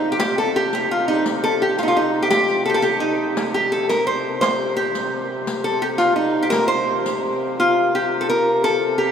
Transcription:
Already playing: hurdy-gurdy C3, resonator guitar played with a steel bar D#4
0.12 resonator guitar played with a steel bar G4
0.19 resonator guitar played with a steel bar G4, riq
0.38 resonator guitar played with a steel bar A4
0.56 resonator guitar played with a steel bar G4
0.73 resonator guitar played with a steel bar G4, riq
0.91 resonator guitar played with a steel bar F4
1.08 resonator guitar played with a steel bar D#4
1.26 riq
1.44 resonator guitar played with a steel bar A4
1.62 resonator guitar played with a steel bar G4
1.78 resonator guitar played with a steel bar F4, riq
1.83 resonator guitar played with a steel bar D#4
1.88 resonator guitar played with a steel bar F4
1.97 resonator guitar played with a steel bar D#4
2.23 resonator guitar played with a steel bar G4
2.30 resonator guitar played with a steel bar G4, riq
2.48 riq
2.66 resonator guitar played with a steel bar G4 A4
2.74 resonator guitar played with a steel bar A4
2.82 resonator guitar played with a steel bar G4, riq
3.00 resonator guitar played with a steel bar D#4
3.37 hurdy-gurdy C3, riq
3.54 resonator guitar played with a steel bar G4
3.72 resonator guitar played with a steel bar A4
3.89 resonator guitar played with a steel bar A#4, riq
4.07 resonator guitar played with a steel bar C5
4.41 resonator guitar played with a steel bar C5, riq
4.77 resonator guitar played with a steel bar G4
4.95 riq
5.47 riq
5.64 resonator guitar played with a steel bar A4
5.82 resonator guitar played with a steel bar G4
5.98 resonator guitar played with a steel bar F4, riq
6.16 resonator guitar played with a steel bar D#4
6.43 resonator guitar played with a steel bar G4
6.50 resonator guitar played with a steel bar A#4, riq
6.68 resonator guitar played with a steel bar C5
7.06 riq
7.57 hurdy-gurdy C3, resonator guitar played with a steel bar F4
7.95 resonator guitar played with a steel bar G4
8.21 resonator guitar played with a steel bar A4
8.29 resonator guitar played with a steel bar A#4
8.64 resonator guitar played with a steel bar A4
8.98 resonator guitar played with a steel bar G4

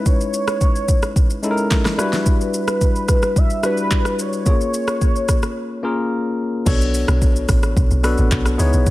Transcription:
Already playing: tine electric piano G#3 C#4 D#4 E4 B4
0.06 soft synth lead C#5, kick, shaker
0.21 shaker
0.34 shaker
0.48 cross-stick, shaker
0.61 kick, shaker
0.75 shaker
0.88 kick, shaker
1.02 cross-stick, shaker
1.16 kick, shaker
1.30 shaker
1.42 tine electric piano G#3 C#4 D#4 E4 A4, shaker
1.51 tine electric piano A#4
1.57 shaker
1.71 kick, snare, clap, shaker
1.85 cross-stick, snare, shaker
1.97 tine electric piano G3 D4 E4 F#4 B4, cross-stick, shaker
2.13 snare, shaker
2.26 soft synth lead B4, kick, shaker
2.41 shaker
2.54 shaker
2.68 cross-stick, shaker
2.81 kick, shaker
2.96 shaker
3.08 kick, cross-stick, shaker
3.22 cross-stick, shaker
3.36 soft synth lead E5, kick, shaker
3.50 shaker
3.63 tine electric piano G3 D4 E4 F#4 B4, soft synth lead B4, cross-stick, shaker
3.77 shaker
3.91 kick, clap, shaker
4.05 cross-stick, shaker
4.19 soft synth lead C#5, shaker
4.33 shaker
4.45 tine electric piano A#3 C#4 F4 G#4 C#5, kick, shaker
4.61 shaker
4.74 shaker
4.88 cross-stick, shaker
5.01 kick, shaker
5.16 shaker
5.29 kick, cross-stick, shaker
5.43 cross-stick, shaker
5.83 tine electric piano A#3 C#4 F4 G#4 A#4
6.66 log drum bass B1, tine electric piano B3 D4 F#4 A4 C#5, kick, crash, shaker
6.81 shaker
6.94 open hi-hat, shaker
7.08 log drum bass B1, cross-stick, shaker
7.22 kick, shaker
7.36 shaker
7.49 log drum bass A1, kick, cross-stick, open hi-hat, shaker
7.63 cross-stick, shaker
7.77 log drum bass B1, kick, shaker
7.91 log drum bass B1, shaker
8.03 tine electric piano B3 D4 F#4 A4 B4, cross-stick, open hi-hat, shaker
8.18 log drum bass A1, shaker
8.31 log drum bass B1, kick, clap, shaker
8.45 cross-stick, shaker
8.58 log drum bass C#2, tine electric piano B3 D#4 E4 G#4 C#5, open hi-hat, shaker
8.73 log drum bass B1, shaker
8.86 log drum bass C#2, kick, shaker

